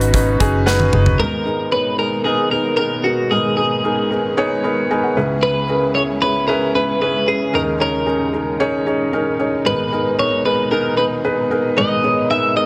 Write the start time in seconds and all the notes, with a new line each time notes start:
Already playing: G#1 B2 C#3 F#3 B3 C#4 D#4 F#4 B4
0.01 closed hi-hat
0.14 C#4 D#4 F#4 B4, kick, closed hi-hat
0.40 F#1 C#4 D#4 F#4 G#4, kick, closed hi-hat
0.66 C#4 D#4 F#4 B4 F#5, snare
0.80 high tom
0.92 F#1 C#4 D#4 F#4 G#4, mid tom
1.06 floor tom
1.19 G#1 G#2 B2 G#3 A#3 B3 D#4 G#4 A#4
1.45 B3 D#4 G#4 A#4
1.72 B3 D#4 G#4 B4 C#5
1.98 B3 D#4 G#4 A#4
2.24 B3 D#4 G#4 A#4
2.51 B3 D#4 G#4 A#4
2.77 B3 D#4 G#4 A#4
3.04 B3 D#4 F#4 G#4 A#4
3.31 G#1 G#2 B3 C#4 D#4 G#4 A#4
3.57 B3 D#4 G#4 A#4
3.84 B3 D#4 G#4 A#4
4.11 B3 D#4 G#4 A#4
4.37 B3 D#4 G#4 C#5
4.64 B3 D#4 G#4 A#4 B5
4.91 B3 D#4 G#4 A#4 G#5
5.03 F#5
5.17 C#2 C#3 B3 C#4 E4 G#4 B4
5.43 B4
5.69 C#4 E4 G#4 A#4
5.95 C#4 E4 G#4 C#5
6.22 C#4 E4 G#4 B4 C#5
6.48 C#4 E4 G#4 A#4 B4
6.75 C#4 E4 G#4 B4
7.01 C#4 E4 G#4 B4
7.27 C#4 E4 G#4 B4
7.53 D#2 A#2 D#3 C#4 D#4 G#4 A#4
7.80 C#4 D#4 G#4 A#4 C#5
8.06 C#4 D#4 G#4 A#4
8.33 C#4 D#4 G#4 A#4
8.60 C#4 D#4 G#4 C#5
8.86 C#4 D#4 G#4 C#5
9.13 C#4 D#4 G#4 A#4
9.39 C#4 D#4 G#4 C#5
9.65 G#1 G#2 B2 B3 D#4 G#4 A#4 B4
9.92 B3 D#4 G#4 A#4
10.18 B3 D#4 G#4 A#4 C#5
10.45 B3 D#4 G#4 A#4 B4
10.71 B3 D#4 G#4 A#4
10.97 B3 D#4 G#4 A#4 B4
11.24 B3 D#4 G#4 B4
11.50 B3 D#4 G#4 A#4
11.77 G#1 G#2 B3 D#4 G#4 A#4 D#5
12.03 B3 D#4 G#4 C#5
12.30 B3 D#4 G#4 A#4 E5
12.57 B3 D#4 G#4 A#4 D#5